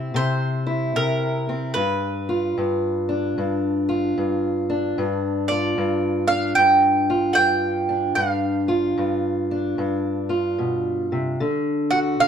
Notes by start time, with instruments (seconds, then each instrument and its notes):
Already playing: steel-string acoustic guitar C3 C4 E4, mandolin E5
0.14 steel-string acoustic guitar C3, mandolin C5
0.67 steel-string acoustic guitar E4
0.96 steel-string acoustic guitar C3, mandolin A#4
1.49 steel-string acoustic guitar C4
1.74 steel-string acoustic guitar G2, mandolin B4
2.29 steel-string acoustic guitar F4
2.58 steel-string acoustic guitar G2
3.09 steel-string acoustic guitar D4
3.38 steel-string acoustic guitar G2
3.89 steel-string acoustic guitar F4
4.18 steel-string acoustic guitar G2
4.70 steel-string acoustic guitar D4
4.98 steel-string acoustic guitar G2
5.48 steel-string acoustic guitar F4, mandolin D5
5.78 steel-string acoustic guitar G2
6.28 steel-string acoustic guitar D4, mandolin F5
6.55 steel-string acoustic guitar G2, mandolin G5
7.10 steel-string acoustic guitar F4
7.33 steel-string acoustic guitar G2, mandolin F#5 G5
7.89 steel-string acoustic guitar D4
8.15 steel-string acoustic guitar G2, mandolin F5
8.68 steel-string acoustic guitar F4
8.98 steel-string acoustic guitar G2
9.51 steel-string acoustic guitar D4
9.78 steel-string acoustic guitar G2
10.29 steel-string acoustic guitar F4
10.58 steel-string acoustic guitar B2
11.12 steel-string acoustic guitar C3
11.40 steel-string acoustic guitar D3
11.91 steel-string acoustic guitar F#4, mandolin F#5
12.20 steel-string acoustic guitar D3, mandolin F5